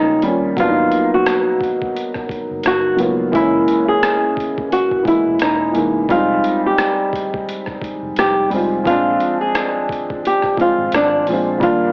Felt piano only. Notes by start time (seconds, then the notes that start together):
Already playing: G3 A#3 C#4 F4
0.23 G3 A#3 C#4
0.28 F4
0.57 F#3 A#3 B3
0.62 D4
0.69 D#4
2.97 F#3 A#3 B3
3.02 F4
3.32 E3 G#3 A#3
3.37 C#4
5.03 E3 G#3 A#3
5.08 E4
5.72 E3 G#3 A#3
5.77 D#4
6.09 G3 G#3 C4
6.14 D#4
8.50 G3 G#3 C4
8.56 F4
8.84 F3 G#3 C4
8.89 D4
10.56 F3 G#3 C4
10.62 F4
11.28 F3 G#3 C4
11.33 F4
11.58 F3 G3 A#3
11.63 D4